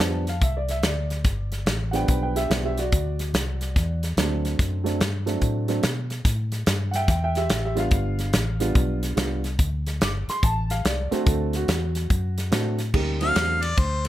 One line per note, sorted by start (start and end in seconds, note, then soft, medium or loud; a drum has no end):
0.00 0.40 F2 medium
0.00 0.24 F3 medium
0.00 0.24 G3 medium
0.00 0.24 B3 medium
0.00 0.24 D4 medium
0.00 0.27 A5 medium
0.00 snare loud
0.00 closed hi-hat medium
0.27 0.42 F5 medium
0.27 snare soft
0.27 closed hi-hat medium
0.41 0.82 C2 loud
0.41 0.56 E5 medium
0.41 kick medium
0.41 closed hi-hat medium
0.57 0.70 D5 medium
0.69 0.84 E5 medium
0.69 snare soft
0.69 closed hi-hat medium
0.83 1.24 D2 medium
0.83 1.65 D5 medium
0.83 snare loud
0.83 closed hi-hat medium
1.10 snare soft
1.10 closed hi-hat medium
1.24 1.65 G1 medium
1.24 kick loud
1.24 snare soft
1.24 closed hi-hat medium
1.52 snare soft
1.52 closed hi-hat medium
1.66 2.07 A1 medium
1.66 snare loud
1.66 closed hi-hat medium
1.91 2.47 F3 medium
1.91 2.47 G3 medium
1.91 2.47 B3 medium
1.91 2.47 D4 medium
1.91 1.95 F#5 medium
1.91 snare soft
1.91 closed hi-hat medium
1.95 2.07 B4 medium
1.95 2.07 G5 medium
2.08 2.49 B1 loud
2.08 2.21 B4 medium
2.08 2.21 G5 medium
2.08 kick medium
2.08 closed hi-hat medium
2.23 2.35 B4 medium
2.23 2.36 G5 medium
2.36 2.48 G4 medium
2.36 2.49 E5 loud
2.36 snare soft
2.36 closed hi-hat medium
2.50 2.91 B1 medium
2.50 2.74 F3 medium
2.50 2.74 G3 medium
2.50 2.74 B3 medium
2.50 2.75 D4 medium
2.50 2.63 G4 medium
2.50 2.64 E5 medium
2.50 snare loud
2.50 closed hi-hat medium
2.65 2.77 G4 medium
2.65 2.78 E5 medium
2.77 3.99 F#4 medium
2.77 4.00 D5 medium
2.77 snare soft
2.77 closed hi-hat medium
2.92 3.33 D2 medium
2.92 kick loud
2.92 closed hi-hat medium
3.19 snare soft
3.19 closed hi-hat medium
3.33 3.74 C2 medium
3.33 snare loud
3.33 closed hi-hat medium
3.61 snare soft
3.61 closed hi-hat medium
3.76 4.16 E2 loud
3.76 kick loud
3.76 snare soft
3.76 closed hi-hat medium
4.03 snare soft
4.03 closed hi-hat medium
4.17 4.57 D2 medium
4.17 4.80 F#3 medium
4.17 4.81 A3 medium
4.17 4.81 C4 medium
4.17 4.81 D4 medium
4.17 snare loud
4.17 closed hi-hat medium
4.45 snare soft
4.45 closed hi-hat medium
4.59 4.99 F#2 medium
4.59 kick loud
4.59 snare soft
4.59 closed hi-hat medium
4.84 4.98 F#3 medium
4.84 4.98 A3 medium
4.84 4.98 C4 medium
4.84 4.99 D4 medium
4.84 snare soft
4.84 closed hi-hat medium
5.01 5.41 G2 medium
5.01 snare loud
5.01 closed hi-hat medium
5.26 5.66 F#3 medium
5.26 5.66 A3 medium
5.26 5.66 C4 medium
5.26 5.66 D4 medium
5.26 snare soft
5.26 closed hi-hat medium
5.42 5.82 A2 loud
5.42 kick medium
5.42 closed hi-hat medium
5.68 5.82 F#3 medium
5.68 5.82 A3 medium
5.68 5.82 C4 medium
5.68 5.82 D4 medium
5.68 snare soft
5.68 closed hi-hat medium
5.83 6.24 B2 medium
5.83 snare loud
5.83 closed hi-hat medium
6.10 snare soft
6.10 closed hi-hat medium
6.25 6.66 A2 medium
6.25 kick loud
6.25 snare soft
6.25 closed hi-hat medium
6.52 snare soft
6.52 closed hi-hat medium
6.66 7.08 G2 medium
6.66 snare loud
6.66 closed hi-hat medium
6.91 6.95 F#5 medium
6.91 snare soft
6.91 closed hi-hat medium
6.96 7.08 E5 medium
6.96 7.09 G5 loud
7.08 7.49 E2 medium
7.08 7.22 E5 medium
7.08 7.22 G5 medium
7.08 kick loud
7.08 snare soft
7.08 closed hi-hat medium
7.24 7.36 E5 medium
7.24 7.37 G5 medium
7.35 7.49 G4 medium
7.35 7.50 E5 loud
7.35 snare soft
7.35 closed hi-hat medium
7.50 7.91 A1 medium
7.50 7.63 G4 medium
7.50 7.64 E5 medium
7.50 snare loud
7.50 closed hi-hat loud
7.65 7.78 G4 medium
7.65 7.78 E5 medium
7.75 8.30 G3 medium
7.75 8.30 B3 medium
7.75 8.30 D4 medium
7.75 8.30 F4 medium
7.75 snare soft
7.75 closed hi-hat medium
7.79 9.00 F5 loud
7.91 8.32 G1 medium
7.91 kick loud
7.91 closed hi-hat medium
8.19 snare soft
8.19 closed hi-hat medium
8.33 8.74 A1 medium
8.33 snare loud
8.33 closed hi-hat medium
8.60 9.14 G3 medium
8.60 9.14 B3 medium
8.60 9.14 D4 medium
8.60 9.15 F4 medium
8.60 snare soft
8.60 closed hi-hat medium
8.75 9.16 B1 loud
8.75 kick loud
8.75 closed hi-hat medium
9.03 snare soft
9.03 closed hi-hat medium
9.16 9.58 C2 medium
9.16 9.41 G3 medium
9.16 9.41 B3 medium
9.16 9.41 D4 medium
9.16 9.41 F4 medium
9.16 snare loud
9.16 closed hi-hat medium
9.44 snare soft
9.44 closed hi-hat medium
9.59 10.00 D2 medium
9.59 kick loud
9.59 closed hi-hat medium
9.87 snare soft
9.87 closed hi-hat medium
10.01 10.26 G1 medium
10.01 10.27 D6 medium
10.01 snare loud
10.01 closed hi-hat medium
10.28 10.43 C6 loud
10.28 muted fingered electric bass stroke soft
10.28 snare soft
10.28 closed hi-hat medium
10.43 10.83 A1 loud
10.43 10.69 A5 medium
10.43 kick loud
10.43 closed hi-hat medium
10.70 10.85 F5 medium
10.70 snare soft
10.70 closed hi-hat medium
10.85 11.10 C2 medium
10.85 11.12 D5 medium
10.85 snare loud
10.85 closed hi-hat medium
11.11 11.65 A3 medium
11.11 11.65 C4 medium
11.11 11.66 D4 medium
11.11 11.54 F#4 medium
11.11 11.27 C5 medium
11.11 snare soft
11.11 closed hi-hat medium
11.26 11.67 D2 medium
11.26 11.53 A4 medium
11.26 kick loud
11.26 closed hi-hat medium
11.53 12.51 F#4 medium
11.53 snare soft
11.53 closed hi-hat medium
11.68 12.09 E2 loud
11.68 snare loud
11.68 closed hi-hat medium
11.95 snare soft
11.95 closed hi-hat medium
12.10 12.51 F#2 medium
12.10 kick loud
12.10 closed hi-hat medium
12.38 snare soft
12.38 closed hi-hat medium
12.51 12.93 A2 medium
12.51 12.76 A3 medium
12.51 12.76 C4 medium
12.51 12.76 D4 medium
12.51 12.76 F#4 medium
12.51 snare loud
12.51 closed hi-hat medium
12.79 snare soft
12.79 closed hi-hat medium
12.93 13.35 D2 medium
12.93 13.18 G3 medium
12.93 13.18 A#3 medium
12.93 13.18 C#4 medium
12.93 13.18 D#4 medium
12.93 13.19 G4 medium
12.93 kick loud
12.93 crash medium
13.21 13.58 F#3 medium
13.21 13.58 A3 medium
13.21 13.58 C4 medium
13.21 13.58 D4 medium
13.21 13.58 F#4 medium
13.21 13.64 F5 loud
13.21 snare soft
13.21 ride medium
13.36 13.77 E2 medium
13.36 snare loud
13.36 ride medium
13.62 13.79 D5 medium
13.62 snare soft
13.62 ride medium
13.77 14.08 D2 medium
13.77 14.07 C5 medium
13.77 kick loud
13.77 ride medium
14.05 ride medium